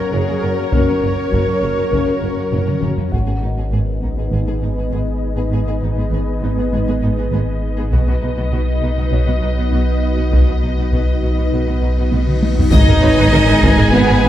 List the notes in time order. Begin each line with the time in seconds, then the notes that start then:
Already playing: C#4 F#4 G#4 A#4 C#5
0.12 F#1 F#2 A#3 C#4 G#4
0.27 F#2 A#3 C#4
0.42 F#1 F#2 A#3 C#4 A#4
0.57 F#2 A#3 C#4
0.72 F#1 F#2 A#3 C#4 A#4 C#5, taiko
0.87 F#2 A#3 C#4
1.02 F#1 F#2 A#3 C#4
1.32 F#1 F#2 A#3 C#4, taiko
1.47 F#2 A#3 C#4
1.62 F#1 F#2 A#3 C#4 G#4
1.77 F#2 A#3 C#4
1.92 F#1 F#2 A#3 C#4, taiko
2.06 F#2 A#3 C#4
2.22 F#1 F#2 A#3 C#4
2.37 F#2 A#3 C#4
2.52 F#1 F#2 A#3 C#4, taiko low-mid
2.66 F#2 A#3 C#4, taiko mid
2.81 F#1 F#2 A#3 C#4, taiko mid
2.97 F#2 A#3 C#4, taiko low
3.11 G#1 G#2 B3 D#4 F#4 G#4 B4 D#5 F#5, taiko
3.26 G#2 B3 G#4
3.41 G#1 G#2 B3 D#4
3.57 G#2 B3 G#4
3.71 G#1 G#2 B3 G#4
4.01 G#1 G#2 B3 D#4, taiko
4.16 G#2 B3 G#4
4.31 G#1 G#2 B3 G#4
4.46 G#2 B3 G#4
4.61 G#1 G#2 B3 D#4
4.76 G#2 B3 G#4
4.91 G#1 G#2 B3 G#4
5.36 G#2 B3 G#4
5.51 G#1 G#2 B3 G#4
5.66 G#2 B3 G#4
5.81 G#1 G#2 B3 D#4
5.96 G#2 B3 G#4
6.11 G#1 G#2 B3 G#4
6.41 G#1 G#2 B3 D#4
6.57 G#2 B3 G#4
6.71 G#1 G#2 B3 G#4
6.87 G#2 B3 G#4
7.01 G#1 G#2 B3 D#4
7.17 G#2 B3 G#4
7.32 G#1 G#2 B3 G#4
7.77 G#2 B3 G#4
7.92 B1 B2 B3 D#4 F#4 B4 D#5, taiko
8.07 B2 B3 F#4
8.21 B1 B2 B3 D#4 D#5
8.36 B2 B3 F#4
8.52 B1 B2 B3 F#4
8.82 B1 B2 B3 D#4
8.97 B2 B3 F#4
9.12 B1 B2 B3 F#4 C#5
9.27 B2 B3 F#4
9.41 B1 B2 B3 D#4
9.57 B2 B3 F#4
9.71 B1 B2 B3 F#4
10.03 D#5
10.17 B2 B3 F#4
10.32 B1 B2 B3 F#4, taiko, cymbal swell
10.47 B2 B3 F#4
10.62 B1 B2 B3 D#4
10.77 B2 B3 F#4
10.92 B1 B2 B3 F#4, taiko
11.22 B1 B2 B3 D#4
11.37 B2 B3 F#4
11.52 B1 B2 B3 F#4
11.67 B2 B3 F#4
11.82 B1 B2 B3 D#4
11.98 B2 B3 F#4
12.12 B1 B2 B3 F#4, taiko high
12.28 taiko mid
12.43 taiko high
12.58 B2 B3 F#4, taiko low
12.72 G#1 G#3 D#4 G#4 B4 D#5 G#5, taiko, sub drop
12.87 G#1 A#4
13.02 G#1 B4 C#5
13.17 G#1 B4, taiko
13.32 G#1 A#4, taiko mid
13.47 G#1 B4
13.62 G#1 G#4 B4, taiko
13.78 G#1 A#4
13.92 G#1 B3 B4
14.07 G#1 A#4
14.22 G#1 B4